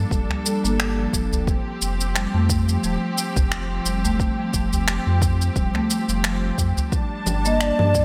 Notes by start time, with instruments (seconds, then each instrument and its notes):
Already playing: string section G3 D4 A4
0.11 sub bass F1, kick, shaker
0.29 finger snap, udu
0.45 marimba G3, shaker
0.64 sub bass G1, marimba A#3, shaker
0.80 finger snap, shaker
0.98 marimba F3
1.13 sub bass F1, marimba F3, kick, shaker
1.32 udu, shaker
1.47 string section F3 C4 G4, kick, shaker
1.82 sub bass F1, shaker
2.01 shaker
2.15 marimba G3, finger snap, shaker
2.34 sub bass F2, marimba A3
2.49 kick, shaker
2.68 marimba F3, shaker
2.83 sub bass D#1, marimba F3, shaker
3.18 shaker
3.36 sub bass F1, kick, udu, shaker
3.52 finger snap, shaker
3.85 sub bass F1, marimba G3, shaker
4.04 marimba A3, udu, shaker
4.20 kick, shaker
4.39 marimba F3
4.54 sub bass F1, marimba F3, kick, shaker
4.73 udu, shaker
4.88 finger snap, shaker
5.07 sub bass F2
5.22 kick, shaker
5.41 shaker
5.56 sub bass D#1, marimba G3, kick, shaker
5.74 marimba A3, finger snap, udu
5.90 shaker
6.08 sub bass F1, marimba F3, shaker
6.24 marimba F3, finger snap, shaker
6.58 sub bass F2, kick, shaker
6.77 udu, shaker
6.92 string section G3 D4 A5, kick, shaker
7.26 sub bass G1, marimba G3, low conga, shaker
7.45 marimba A#3, ney D#5, shaker
7.61 ney D5, finger snap, shaker
7.79 sub bass G2, marimba F3, low conga
7.95 marimba F3, kick, shaker